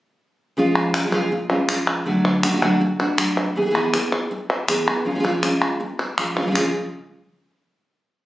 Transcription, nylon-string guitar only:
0.57 0.93 C#3 medium
0.57 0.94 F3 medium
0.57 0.94 G#3 medium
0.57 0.94 C#4 medium
0.57 0.93 F4 loud
0.94 1.03 G#3 soft
0.94 1.03 C#4 medium
0.94 1.04 F4 medium
1.04 1.07 F3 medium
1.04 1.08 G#3 medium
1.04 1.08 C#4 medium
1.04 1.08 F4 medium
1.08 1.12 F3 medium
1.08 1.12 G#3 medium
1.08 1.12 C#4 medium
1.08 1.13 F4 medium
1.13 1.30 C#3 medium
1.13 1.31 F3 medium
1.13 1.31 G#3 medium
1.13 1.31 C#4 loud
1.13 1.31 F4 loud
1.31 muted nylon-string guitar stroke medium
1.50 1.68 G#3 medium
1.50 1.68 C#4 medium
1.50 1.68 F4 medium
1.68 2.05 F3 medium
1.68 2.05 G#3 medium
1.68 2.06 C#4 medium
1.68 2.06 F4 medium
2.05 2.42 D3 medium
2.05 2.43 F#3 medium
2.05 2.43 A3 medium
2.05 2.43 D4 medium
2.05 2.42 F#4 medium
2.43 2.47 A3 soft
2.43 2.48 D4 medium
2.43 2.48 F#4 medium
2.48 2.51 F#3 medium
2.48 2.52 A3 medium
2.48 2.52 D4 medium
2.48 2.53 F#4 medium
2.52 2.56 F#3 medium
2.52 2.56 A3 medium
2.52 2.57 D4 medium
2.52 2.57 F#4 medium
2.57 2.61 F#3 medium
2.57 2.61 A3 medium
2.57 2.61 D4 medium
2.57 2.61 F#4 medium
2.62 2.80 D3 medium
2.62 2.80 F#3 medium
2.62 2.80 A3 medium
2.62 2.80 D4 medium
2.62 2.80 F#4 loud
2.81 muted nylon-string guitar stroke medium
2.99 3.17 A3 soft
2.99 3.18 D4 medium
2.99 3.17 F#4 medium
3.18 3.55 F#3 medium
3.18 3.55 A3 medium
3.18 3.55 D4 medium
3.18 3.56 F#4 medium
3.55 3.60 E3 medium
3.55 3.60 B3 loud
3.55 3.61 E4 medium
3.55 3.61 G#4 loud
3.61 3.65 E3 soft
3.61 3.65 B3 medium
3.61 3.65 E4 medium
3.61 3.65 G#4 medium
3.66 3.69 E3 medium
3.66 3.70 B3 medium
3.66 3.70 E4 medium
3.66 3.70 G#4 medium
3.70 3.74 E3 medium
3.70 3.74 B3 medium
3.70 3.74 E4 medium
3.70 3.75 G#4 medium
3.75 3.93 E3 medium
3.75 3.93 B3 medium
3.75 3.93 E4 medium
3.75 3.93 G#4 medium
3.94 4.30 B3 medium
3.94 4.30 E4 medium
3.94 4.30 G#4 medium
4.31 muted nylon-string guitar stroke medium
4.67 4.86 E3 medium
4.67 4.86 B3 medium
4.67 4.86 E4 medium
4.67 4.86 G#4 medium
4.87 5.05 B3 soft
4.87 5.05 E4 medium
4.87 5.05 G#4 soft
5.05 5.23 C#3 medium
5.05 5.09 F3 medium
5.05 5.10 G#3 medium
5.05 5.10 C#4 medium
5.05 5.11 F4 medium
5.10 5.14 F3 soft
5.10 5.14 G#3 medium
5.10 5.15 C#4 soft
5.10 5.15 F4 soft
5.15 5.18 F3 medium
5.15 5.18 G#3 medium
5.15 5.19 C#4 medium
5.15 5.19 F4 medium
5.19 5.23 F3 medium
5.19 5.23 G#3 medium
5.19 5.24 C#4 medium
5.19 5.24 F4 medium
5.24 5.42 C#3 medium
5.24 5.42 F3 medium
5.24 5.43 G#3 medium
5.24 5.43 C#4 medium
5.24 5.41 F4 medium
5.43 5.79 G#3 soft
5.43 5.79 C#4 medium
5.43 5.80 F4 medium
5.80 muted nylon-string guitar stroke medium
6.18 6.36 F3 medium
6.18 6.36 G#3 medium
6.18 6.36 C#4 medium
6.18 6.35 F4 medium
6.36 6.41 G#3 soft
6.36 6.41 C#4 soft
6.36 6.42 F4 medium
6.42 6.45 F3 medium
6.42 6.46 G#3 medium
6.42 6.46 C#4 medium
6.42 6.46 F4 medium
6.46 6.50 F3 medium
6.46 6.50 G#3 medium
6.46 6.51 C#4 medium
6.46 6.51 F4 medium
6.51 6.55 F3 medium
6.51 6.55 G#3 medium
6.51 6.55 C#4 medium
6.51 6.55 F4 medium
6.56 6.71 C#3 medium
6.56 6.71 F3 medium
6.56 6.71 G#3 medium
6.56 6.71 C#4 medium
6.56 6.71 F4 medium

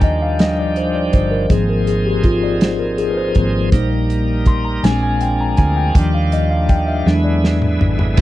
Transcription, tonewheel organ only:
0.00 1.46 D#3 medium
0.00 1.46 F3 medium
0.00 1.46 D4 medium
0.00 1.49 G4 medium
1.51 3.70 F3 medium
1.51 3.70 C4 medium
1.51 3.70 D#4 medium
1.51 3.69 G#4 medium
3.72 4.84 G3 medium
3.72 4.83 A#3 medium
3.72 4.84 D#4 medium
3.72 4.84 A#4 medium
4.84 5.96 F3 medium
4.84 5.96 A#3 medium
4.84 5.94 D4 medium
4.84 5.96 G#4 medium
5.95 7.07 D#3 medium
5.95 7.07 G3 medium
5.95 7.06 D4 medium
5.95 7.07 F4 medium
7.06 8.18 D3 medium
7.06 8.18 G#3 medium
7.06 8.18 B3 medium
7.06 7.14 D4 medium
7.13 8.18 E4 medium
8.17 8.21 E3 soft
8.17 8.21 G3 soft

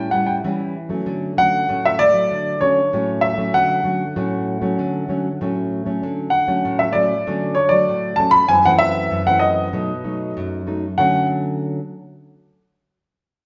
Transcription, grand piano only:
0.11 0.29 F#5 medium
0.26 0.34 G5 medium
1.38 1.86 F#5 loud
1.85 2.01 E5 medium
1.99 2.57 D5 loud
2.61 3.25 C#5 medium
3.21 3.51 E5 medium
3.54 5.36 F#5 medium
6.30 6.80 F#5 medium
6.79 6.94 E5 medium
6.93 7.58 D5 medium
7.55 7.72 C#5 medium
7.69 8.14 D5 medium
8.16 8.32 A5 medium
8.31 8.47 B5 loud
8.48 8.64 G#5 loud
8.65 8.71 F#5 loud
8.79 9.23 E5 loud
9.27 9.43 F#5 medium
9.39 10.30 D#5 medium
10.98 11.26 F#5 medium

